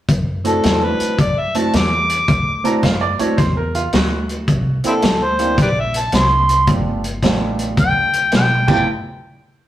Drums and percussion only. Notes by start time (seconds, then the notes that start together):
0.09 kick, closed hi-hat
0.45 closed hi-hat
0.63 snare, closed hi-hat
1.00 closed hi-hat
1.18 kick, closed hi-hat
1.55 closed hi-hat
1.73 snare, closed hi-hat
2.09 closed hi-hat
2.28 kick, closed hi-hat
2.65 closed hi-hat
2.83 kick, snare, closed hi-hat
3.19 closed hi-hat
3.38 kick, snare, closed hi-hat
3.75 closed hi-hat
3.93 snare, closed hi-hat
4.29 closed hi-hat
4.48 kick, closed hi-hat
4.84 closed hi-hat
5.02 snare, closed hi-hat
5.39 closed hi-hat
5.58 kick, snare, closed hi-hat
5.94 closed hi-hat
6.12 snare, closed hi-hat
6.49 closed hi-hat
6.67 kick, closed hi-hat
7.04 closed hi-hat
7.23 kick, snare, closed hi-hat
7.59 closed hi-hat
7.77 kick, closed hi-hat
8.13 closed hi-hat
8.32 snare, closed hi-hat
8.68 kick, crash